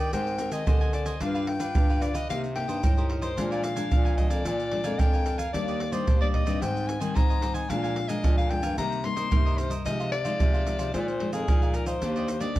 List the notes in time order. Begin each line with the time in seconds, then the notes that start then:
Already playing: G3 D4 D#4 A#4 D5
0.00 G4 D#5
0.13 G#2 G#3 C4 G4 A#4 C5 D#5 G5 G#5, pandeiro, shaker, surdo
0.27 pandeiro, shaker
0.38 C4 G4 A#4, muted cavaquinho stroke, pandeiro, shaker
0.52 D#3 C5 D#5 G#5, pandeiro, shaker
0.67 D3 C4 G4 A#4 C5 D#5 G#5, pandeiro, shaker, surdo
0.81 C5 D#5 G#5, pandeiro, shaker
0.93 G4 C5 D5 D#5 G#5, pandeiro, shaker
1.06 C5 D#5 G#5, pandeiro, shaker
1.20 G2 G3 D4 F4 G4 B4 F5, pandeiro, shaker, surdo
1.34 G4 B4 F5, pandeiro, shaker
1.47 G5, muted cavaquinho stroke, pandeiro
1.59 D4 F4 G4 B4 F5, pandeiro, shaker
1.75 G2 D3 D4 G4 B4 F5, pandeiro, shaker, surdo
1.89 G4 B4 F5, pandeiro, shaker
2.01 D4 F4 B4 D5, pandeiro, shaker
2.14 G4 B4 D#5 F5, pandeiro, shaker
2.29 C3 A#3 D#4 G4 A#4 C5 D#5 F5, pandeiro, shaker, surdo
2.44 pandeiro, shaker
2.55 A#3 D#4 G4 G5, muted cavaquinho stroke, pandeiro
2.68 G2 A#4 C5 D#5, pandeiro, shaker
2.83 G2 A2 D#4 A#4 C5 D#5, pandeiro, shaker, surdo
2.97 D#4 G4 A#4 C5 D#5, pandeiro, shaker
3.09 D#4 A#4 C5 D#5, pandeiro
3.21 A#4 C5 D#5, pandeiro, shaker
3.36 A#2 F3 G#3 D4 A#4 F5 G#5, pandeiro, shaker, surdo
3.51 A#4 D5 F5 G#5, pandeiro, shaker
3.64 F5, pandeiro, shaker
3.76 F3 G#3 D4 A#4 F5 G#5, pandeiro, shaker
3.91 F2 A#2 D4 A#4 F5 G#5, pandeiro, shaker, surdo
4.05 A#4 F5 G#5, pandeiro, shaker
4.17 F3 G#3 D4 D#5, pandeiro, shaker, surdo
4.30 F2 A#4 D5 F5 G#5, pandeiro, shaker
4.45 A#2 D4 A#4 F5 G#5, pandeiro, shaker, surdo
4.60 pandeiro, shaker
4.71 F3 G#3 D4, muted cavaquinho stroke, pandeiro
4.84 F2 F3 G#3 D4 A#4 F5 G#5, pandeiro, shaker
4.99 F2 F3 G#3 D4 A#4 F5 G5 G#5, pandeiro, shaker, surdo
5.13 A#4 F5 G#5, pandeiro, shaker
5.25 D4 A#4 F5 G#5, pandeiro, shaker
5.38 A#4 F5 G#5, pandeiro, shaker
5.53 D#2 D#3 G3 A#3 D4 G4 D5 D#5, pandeiro, shaker, surdo
5.68 G4 D5 D#5, pandeiro, shaker
5.80 muted cavaquinho stroke, pandeiro
5.92 G3 A#3 D4 G4 C5 D5 D#5, pandeiro, shaker
6.07 D#2 A#2 D4 G4 D5 D#5, pandeiro, shaker, surdo
6.21 G3 A#3 D4 G4 D5 D#5, pandeiro, shaker
6.34 D#5, pandeiro, surdo
6.46 G2 G3 C4 D#4 G4 D5 D#5, pandeiro, shaker
6.61 G#2 G4 C5 D#5 G5 G#5, pandeiro, shaker, surdo
6.77 pandeiro, shaker
6.87 G#5, muted cavaquinho stroke, pandeiro, shaker
7.00 D#3 G3 C4 D#4 C5 D#5 G#5, pandeiro, shaker
7.14 G#2 D#3 G4 C5 D#5 G#5 A#5, pandeiro, shaker, surdo
7.29 C5 D#5 G#5, pandeiro, shaker
7.41 G3 C4 D#4 G4 C5 D#5 G#5, pandeiro, shaker
7.54 C5 D#5 G#5, pandeiro, shaker
7.69 A#2 F3 G#3 D4 A#4 F5 G#5, pandeiro, shaker, surdo
7.83 A#4 F5 G#5, pandeiro, shaker
7.96 muted cavaquinho stroke, pandeiro
8.08 F3 G#3 D4 A#4 D#5 F5 G#5, pandeiro, shaker
8.23 F2 A#2 D4 A#4 F5 G#5, pandeiro, shaker, surdo
8.37 A#4 F5 G#5, pandeiro, shaker
8.50 F3 G#3 D4 G5, pandeiro
8.62 G2 A#4 F5 G#5, pandeiro, shaker
8.77 C3 G3 A#3 D#4 A#4 C5 D#5 A#5, pandeiro, shaker, surdo
8.92 pandeiro, shaker
9.04 G3 A#3 D#4 C6, muted cavaquinho stroke, pandeiro
9.16 G3 A#3 D#4 A#4 C5 D#5, pandeiro, shaker
9.31 G2 C3 G3 A#3 D#4 A#4 C5 D#5, pandeiro, shaker, surdo
9.45 A#4 C5 D#5, pandeiro, shaker
9.57 D#4 A#4 C5 D#5, pandeiro, shaker
9.70 A#4 C5 D#5, pandeiro, shaker
9.85 C3 F3 G#3 D#4 G#4 C5 D#5 F5, pandeiro, shaker, surdo
10.00 G#4 C5 F5, pandeiro, shaker
10.12 D5, muted cavaquinho stroke, pandeiro
10.24 F3 G#3 D#4 G#4 C5 F5, pandeiro, shaker
10.39 C3 D#4 G#4 C5 F5, pandeiro, shaker, surdo
10.53 G#4 C5 F5, pandeiro, shaker
10.66 F3 G#3 D#4, pandeiro, shaker
10.78 C3 G#4 C5 F5, pandeiro, shaker
10.93 A#2 F3 G#3 D#4 G#4 A#4 C5 D#5 F5, pandeiro, shaker, surdo
11.01 D5
11.08 C5, pandeiro, shaker
11.20 F3 G#3 D#4, muted cavaquinho stroke, pandeiro
11.33 F2 G#4 A#4 D#5 F5, pandeiro, shaker
11.48 F2 A#2 F3 G#3 D#4 G#4 A#4 D#5 F5, pandeiro, shaker, surdo
11.62 A#4 D#5 F5, pandeiro, shaker
11.74 G#4 A#4 D#5 F5, pandeiro, shaker
11.86 A#4 C5 D#5 F5, pandeiro, shaker
12.02 D#2 D#3 A#3 D4 G4 D5 D#5, pandeiro, shaker, surdo
12.16 G4 D5 D#5, pandeiro, shaker
12.28 muted cavaquinho stroke, pandeiro, shaker
12.40 A#3 D4 G4 D5 D#5, pandeiro, shaker
12.55 D#2 A#2 D4 G4 D#5, pandeiro, shaker, surdo